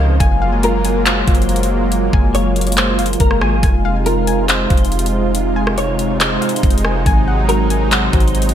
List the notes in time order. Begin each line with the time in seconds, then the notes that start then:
Already playing: C#2 C3 C#3 F3 D#4 C5 D#5
0.00 F5
0.20 F#1 F#3 G#3 A#3 F4 G#5, kick, closed hi-hat
0.42 F5
0.63 F4 A#4, closed hi-hat
0.85 G#5, closed hi-hat
1.06 C5 F5, clap, closed hi-hat
1.27 F#1 F4, kick, closed hi-hat
1.35 closed hi-hat
1.42 closed hi-hat
1.49 closed hi-hat
1.56 closed hi-hat
1.63 closed hi-hat
1.92 closed hi-hat
2.13 F#1 G#5, kick
2.35 C#5, closed hi-hat
2.56 closed hi-hat
2.61 closed hi-hat
2.67 closed hi-hat
2.72 closed hi-hat
2.77 C5, clap, closed hi-hat
2.99 F5, closed hi-hat
3.06 closed hi-hat
3.13 closed hi-hat
3.20 F#1 A#4, kick, closed hi-hat
3.31 cross-stick
3.41 G#1 G#4 G#5, cross-stick
3.63 F1 C3 D#4 G#5, kick, closed hi-hat
3.85 F5
4.06 F4 A#4, closed hi-hat
4.27 G#5, closed hi-hat
4.49 C5 F5, clap, closed hi-hat
4.70 F1 F4, kick, closed hi-hat
4.77 closed hi-hat
4.85 closed hi-hat
4.92 closed hi-hat
4.99 closed hi-hat
5.06 closed hi-hat
5.35 closed hi-hat
5.56 G#5
5.67 cross-stick
5.78 C#5, closed hi-hat
5.99 closed hi-hat
6.20 C5, clap, closed hi-hat
6.41 F5, closed hi-hat
6.49 closed hi-hat
6.56 closed hi-hat
6.63 F1, kick, closed hi-hat
6.70 closed hi-hat
6.78 closed hi-hat
6.85 G#5, cross-stick
7.06 G#1 F#3 G#5, kick, closed hi-hat
7.28 F#5
7.49 F#4 A#4, closed hi-hat
7.70 G#5, closed hi-hat
7.92 C5 F#5, clap, closed hi-hat
8.13 G#1 F#4, kick, closed hi-hat
8.20 closed hi-hat
8.28 closed hi-hat
8.35 closed hi-hat
8.42 closed hi-hat
8.49 closed hi-hat